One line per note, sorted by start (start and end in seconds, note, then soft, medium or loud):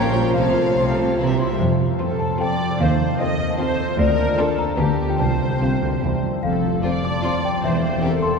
0.00 0.29 A#1 medium
0.00 0.29 A#2 medium
0.00 0.36 A#2 medium
0.00 1.20 F3 medium
0.00 1.20 F3 soft
0.00 0.35 A#3 medium
0.00 0.14 A#3 soft
0.00 0.33 C#4 medium
0.00 0.35 C#4 soft
0.00 0.11 F4 medium
0.00 0.33 F4 medium
0.00 0.14 G4 soft
0.00 0.22 A#4 medium
0.00 0.14 A#4 soft
0.00 0.32 C#5 medium
0.00 0.36 C#5 medium
0.00 0.86 F5 medium
0.00 0.31 G5 medium
0.00 0.33 G5 medium
0.00 0.31 A#5 medium
0.00 0.36 A#5 medium
0.04 0.14 F5 soft
0.13 0.24 G3 soft
0.13 0.54 F4 soft
0.13 0.24 F4 soft
0.13 0.23 G4 soft
0.13 0.23 C#5 soft
0.23 0.35 A#3 soft
0.23 0.35 G4 soft
0.23 0.36 A#4 soft
0.23 0.34 A#4 soft
0.23 0.34 F5 soft
0.33 0.71 C2 medium
0.33 1.17 C3 medium
0.33 0.71 C3 medium
0.33 1.17 A3 medium
0.33 0.45 A3 soft
0.33 1.17 F4 medium
0.33 0.44 F4 soft
0.33 0.44 C5 soft
0.33 1.37 C5 medium
0.33 1.14 F5 medium
0.33 1.17 F5 medium
0.33 0.72 A5 soft
0.44 0.56 F3 soft
0.44 1.28 C4 soft
0.44 0.56 C4 soft
0.44 0.55 A4 soft
0.44 0.55 F5 soft
0.55 0.66 A3 soft
0.55 1.20 F4 soft
0.55 0.66 F4 soft
0.55 0.66 C5 soft
0.65 0.77 F3 soft
0.65 0.77 C4 soft
0.65 0.76 A4 soft
0.65 1.20 A4 soft
0.65 0.76 F5 soft
0.75 1.13 C2 soft
0.75 1.13 C3 medium
0.75 0.87 A3 soft
0.75 0.87 F4 soft
0.75 0.86 C5 soft
0.75 1.99 C5 soft
0.75 0.82 C6 medium
0.86 0.98 F3 soft
0.86 0.98 C4 soft
0.86 0.97 A4 soft
0.86 0.97 F5 soft
0.86 1.07 F5 soft
0.97 1.09 A3 soft
0.97 1.09 F4 soft
0.97 1.08 C5 soft
0.97 1.03 A5 medium
0.97 1.20 A5 soft
1.08 1.19 F3 soft
1.08 1.19 C4 soft
1.08 1.19 A4 soft
1.08 1.19 F5 soft
1.08 1.20 F5 soft
1.18 1.55 C2 medium
1.18 1.55 C3 medium
1.18 1.62 C3 medium
1.18 1.39 E3 medium
1.18 1.29 E3 soft
1.18 1.39 G3 soft
1.18 1.28 E4 soft
1.18 1.40 E4 soft
1.18 1.29 E4 soft
1.18 1.28 C5 soft
1.18 1.39 A#5 medium
1.28 1.40 G3 soft
1.28 1.69 C4 soft
1.28 1.40 C4 soft
1.28 1.39 G4 soft
1.28 1.39 E5 soft
1.38 1.51 E3 soft
1.38 1.49 E4 soft
1.38 1.61 E4 soft
1.38 1.51 E4 soft
1.38 1.49 C5 soft
1.38 1.45 C6 medium
1.49 1.61 G3 soft
1.49 1.61 C4 soft
1.49 1.59 G4 soft
1.49 1.61 G4 soft
1.49 1.60 E5 soft
1.60 1.92 F1 medium
1.60 1.92 F2 medium
1.60 4.80 F3 medium
1.60 2.16 C5 medium
1.70 2.99 C4 soft
1.80 3.09 F4 soft
1.90 2.69 A4 soft
2.00 2.30 C4 medium
2.00 2.30 F4 medium
2.00 2.30 A4 medium
2.00 2.38 A4 medium
2.00 2.59 C5 medium
2.10 2.49 F5 soft
2.20 2.39 A5 medium
2.30 4.00 C6 soft
2.40 2.70 C4 medium
2.40 2.70 F4 medium
2.40 2.70 A4 medium
2.40 2.81 D5 medium
2.40 2.77 G5 medium
2.40 3.48 A5 medium
2.51 3.39 F5 soft
2.60 3.28 C5 medium
2.71 3.19 A4 soft
2.80 3.12 D#2 medium
2.80 4.00 D#3 medium
2.80 3.20 C5 medium
2.80 3.17 F5 medium
2.90 4.00 A3 medium
3.00 4.00 C4 soft
3.10 3.88 F4 medium
3.20 3.49 C4 medium
3.20 3.49 F4 medium
3.20 3.78 A4 medium
3.20 3.49 A4 medium
3.20 3.59 D#5 medium
3.20 3.75 D#5 medium
3.29 3.68 C5 medium
3.40 3.58 F5 medium
3.49 4.00 A5 medium
3.59 3.89 C4 medium
3.59 3.89 F4 medium
3.59 3.89 A4 medium
3.59 3.98 C5 medium
3.59 4.57 F5 medium
3.69 4.00 C5 medium
3.79 4.00 A4 medium
3.89 4.27 F4 medium
3.98 4.30 D2 medium
3.98 4.77 D3 medium
3.98 4.38 A#4 medium
3.98 4.54 D5 loud
4.08 4.80 A#3 medium
4.18 4.88 D4 medium
4.28 5.08 F4 medium
4.37 4.67 D4 medium
4.37 4.67 F4 medium
4.37 4.79 A4 medium
4.37 4.68 A#4 medium
4.37 4.80 A#4 medium
4.48 5.21 D5 medium
4.58 5.81 F5 medium
4.58 4.77 A#5 medium
4.68 4.80 A#5 medium
4.78 5.11 D2 medium
4.78 5.21 D3 medium
4.78 5.08 B3 medium
4.78 5.09 F4 medium
4.78 5.08 G4 medium
4.78 5.18 G4 medium
4.78 5.07 A5 medium
4.89 5.21 D4 soft
4.99 5.21 B3 soft
5.09 5.50 F4 soft
5.09 5.19 G5 medium
5.19 5.52 C2 medium
5.19 6.01 C3 medium
5.19 6.23 C5 medium
5.19 5.58 A5 medium
5.30 6.11 G3 soft
5.41 6.21 C4 soft
5.51 6.04 F4 soft
5.61 5.80 C2 medium
5.61 5.92 C4 medium
5.61 5.92 F4 medium
5.61 5.91 G4 medium
5.61 6.45 G4 soft
5.61 6.19 G5 medium
5.72 6.83 C5 soft
5.82 5.90 D2 medium
5.82 6.04 F5 soft
5.92 6.45 G5 soft
6.02 6.35 C2 medium
6.02 6.10 E2 medium
6.02 6.45 C3 soft
6.02 6.32 C4 soft
6.02 6.32 E4 soft
6.02 6.32 G4 medium
6.12 6.45 G3 soft
6.22 6.31 F2 medium
6.22 6.52 C4 soft
6.32 6.44 E4 soft
6.43 6.77 F1 medium
6.43 6.77 F2 medium
6.43 7.65 F3 medium
6.43 6.81 A4 medium
6.43 7.00 F5 medium
6.53 7.82 C4 soft
6.64 7.65 F4 soft
6.74 7.52 A4 soft
6.83 6.92 C4 medium
6.83 6.92 F4 medium
6.83 6.91 A4 soft
6.83 7.42 C5 soft
6.83 7.64 D5 medium
6.94 7.32 F5 soft
7.04 7.22 A5 medium
7.04 7.23 D6 medium
7.14 8.39 C6 medium
7.23 7.31 C4 soft
7.23 7.31 F4 medium
7.23 7.33 A4 medium
7.23 7.65 A5 medium
7.23 7.43 C6 medium
7.34 7.65 F5 soft
7.43 8.12 C5 medium
7.43 7.63 G5 medium
7.53 7.65 A4 soft
7.63 7.96 E1 medium
7.63 7.96 E2 medium
7.63 8.39 E3 medium
7.63 8.03 C5 medium
7.63 8.19 E5 medium
7.73 8.39 A#3 soft
7.83 8.39 C4 soft
7.92 8.39 G4 medium
8.02 8.11 C4 medium
8.02 8.10 G4 medium
8.02 8.39 A4 medium
8.02 8.39 A#4 medium
8.02 8.12 A#4 medium
8.13 8.39 C5 medium
8.22 8.39 G5 medium
8.22 8.39 C6 medium
8.32 8.39 A#5 medium